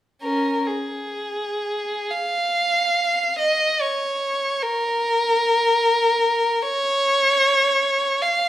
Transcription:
0.23 C#4 A#4
0.67 G#4
2.11 F5
3.39 D#5
3.82 C#5
4.63 A#4
6.63 C#5
8.22 F5

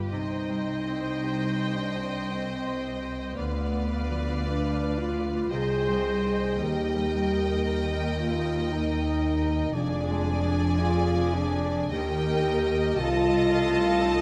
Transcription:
Already playing: G2 D3 D4 F4 G4 B4 D5 G5
0.10 C2 C3 D#4 C5 D#5 G5
0.49 G3
0.88 C4
1.24 G4
1.59 C5
1.75 D4
1.96 G4
2.30 C4 G5
2.67 C5
3.02 G4
3.36 D2 D3 B3 B4 D5 F5
3.75 D4
4.11 F3
4.46 D4 F4
4.82 B4
4.98 F4
5.18 F4
5.51 C2 C3 G#4 C5 D#5 G5
5.88 G3
6.23 D#4 C5
6.58 D#2 D#3 G4 A#4
6.96 G3
7.31 D#4
7.66 A#4
8.02 G4
8.18 F4
8.37 D#5
8.72 D#4 A#5
9.07 D#5
9.42 G4
9.73 F1 F2 F3 D4 G#4 D5 G#5
10.10 G#3
10.45 D4
10.80 F4 G#4
11.17 D4
11.34 D4
11.56 D5
11.91 D#2 D#3 G4 A#4 D#5 G5
12.30 D#4
12.65 D#4 G4
12.98 C2 C3 F4 A4 A5
13.34 C4
13.69 A3
14.05 D#4

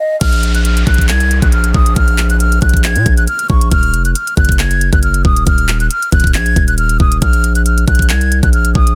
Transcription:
0.00 D#5
0.21 A#1 F6, kick, closed hi-hat, crash, downlifter
0.32 closed hi-hat
0.43 closed hi-hat
0.55 F#6, closed hi-hat
0.65 F6, closed hi-hat
0.77 closed hi-hat
0.87 A#1 F#6, kick, closed hi-hat
0.94 closed hi-hat
0.98 kick, closed hi-hat
1.09 C2 G#6, clap, closed hi-hat
1.20 closed hi-hat
1.31 closed hi-hat
1.42 A#1 F#6, kick, closed hi-hat
1.52 F6, closed hi-hat
1.64 closed hi-hat
1.74 A#1 D#6, kick
1.86 closed hi-hat
1.96 A#1 F6, kick, closed hi-hat
2.08 closed hi-hat
2.18 clap, closed hi-hat
2.30 F#6, closed hi-hat
2.40 F6, closed hi-hat
2.52 closed hi-hat
2.62 A#1 F#6, kick, closed hi-hat
2.69 closed hi-hat
2.74 kick, closed hi-hat
2.84 G#6, clap, closed hi-hat
2.96 A#2, closed hi-hat
3.06 A#1, kick, closed hi-hat
3.17 F#6, closed hi-hat
3.27 F6, closed hi-hat
3.39 closed hi-hat
3.50 A#1 C#6, kick
3.61 closed hi-hat
3.71 D#1 F6, kick, closed hi-hat
3.83 closed hi-hat
3.93 F1, closed hi-hat
4.05 F#6, closed hi-hat
4.15 F6, closed hi-hat
4.27 closed hi-hat
4.37 F#1 F#6, kick, closed hi-hat
4.45 closed hi-hat
4.49 kick, closed hi-hat
4.59 G#6, clap, closed hi-hat
4.71 closed hi-hat
4.81 closed hi-hat
4.93 F#1 F#6, kick, closed hi-hat
5.03 F6, closed hi-hat
5.14 closed hi-hat
5.25 D#1 D#6, kick
5.37 closed hi-hat
5.47 D#1 F6, kick, closed hi-hat
5.58 closed hi-hat
5.69 clap, closed hi-hat
5.80 F#6, closed hi-hat
5.90 F6, closed hi-hat
6.02 closed hi-hat
6.12 D#1 F#6, kick, closed hi-hat, open hi-hat
6.20 closed hi-hat
6.24 kick, closed hi-hat
6.34 A#1 G#6, clap, closed hi-hat
6.46 closed hi-hat
6.56 D#1, kick, closed hi-hat
6.68 F#6, closed hi-hat
6.78 F6, closed hi-hat
6.89 closed hi-hat
7.00 D#1 D#6, kick
7.12 closed hi-hat
7.22 A#1 F6, kick, closed hi-hat
7.33 closed hi-hat
7.44 closed hi-hat
7.55 F#6, closed hi-hat
7.66 F6, closed hi-hat
7.78 closed hi-hat
7.88 A#1 F#6, kick, closed hi-hat
7.95 closed hi-hat
7.99 kick, closed hi-hat
8.09 C2 G#6, clap, closed hi-hat
8.21 closed hi-hat
8.32 closed hi-hat
8.43 A#1 F#6, kick, closed hi-hat
8.53 F6, closed hi-hat
8.65 closed hi-hat
8.75 A#1 D#6, kick
8.87 closed hi-hat

